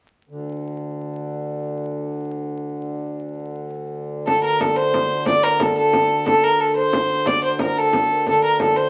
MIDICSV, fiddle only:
0, 0, Header, 1, 2, 480
1, 0, Start_track
1, 0, Tempo, 333148
1, 399, Time_signature, 6, 3, 24, 8
1, 12814, End_track
2, 0, Start_track
2, 0, Title_t, "Fiddle"
2, 0, Program_c, 0, 110
2, 6143, Note_on_c, 0, 69, 84
2, 6375, Note_off_c, 0, 69, 0
2, 6389, Note_on_c, 0, 70, 80
2, 6631, Note_on_c, 0, 69, 75
2, 6652, Note_off_c, 0, 70, 0
2, 6860, Note_on_c, 0, 72, 91
2, 6882, Note_off_c, 0, 69, 0
2, 7587, Note_off_c, 0, 72, 0
2, 7596, Note_on_c, 0, 74, 95
2, 7825, Note_on_c, 0, 70, 82
2, 7847, Note_off_c, 0, 74, 0
2, 8094, Note_on_c, 0, 69, 80
2, 8115, Note_off_c, 0, 70, 0
2, 8308, Note_off_c, 0, 69, 0
2, 8316, Note_on_c, 0, 69, 89
2, 8988, Note_off_c, 0, 69, 0
2, 9028, Note_on_c, 0, 69, 91
2, 9270, Note_on_c, 0, 70, 82
2, 9292, Note_off_c, 0, 69, 0
2, 9513, Note_on_c, 0, 69, 79
2, 9535, Note_off_c, 0, 70, 0
2, 9734, Note_off_c, 0, 69, 0
2, 9743, Note_on_c, 0, 72, 95
2, 10473, Note_on_c, 0, 74, 96
2, 10495, Note_off_c, 0, 72, 0
2, 10709, Note_off_c, 0, 74, 0
2, 10718, Note_on_c, 0, 72, 81
2, 10942, Note_off_c, 0, 72, 0
2, 10963, Note_on_c, 0, 70, 72
2, 11202, Note_on_c, 0, 69, 82
2, 11223, Note_off_c, 0, 70, 0
2, 11920, Note_off_c, 0, 69, 0
2, 11945, Note_on_c, 0, 69, 83
2, 12149, Note_off_c, 0, 69, 0
2, 12158, Note_on_c, 0, 70, 74
2, 12381, Note_off_c, 0, 70, 0
2, 12403, Note_on_c, 0, 69, 78
2, 12622, Note_on_c, 0, 72, 88
2, 12644, Note_off_c, 0, 69, 0
2, 12814, Note_off_c, 0, 72, 0
2, 12814, End_track
0, 0, End_of_file